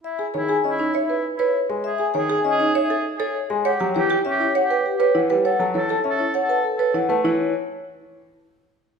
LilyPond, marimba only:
\new Staff \with { instrumentName = "Marimba" } { \time 3/4 \key cis \minor \tempo 4 = 100 r16 gis'16 cis''16 gis'16 r16 dis'16 cis''16 b'16 r16 b'16 r8 | r16 gis'16 cis''16 gis'16 r16 dis'16 cis''16 a'16 r16 a'16 r8 | cis''16 g'16 cis''16 g'16 r16 e'16 cis''16 b'16 r16 b'16 e'16 b'16 | cis''16 a'16 cis''16 a'16 r16 e'16 cis''16 b'16 r16 b'16 e'16 b'16 |
e'8 r2 r8 | }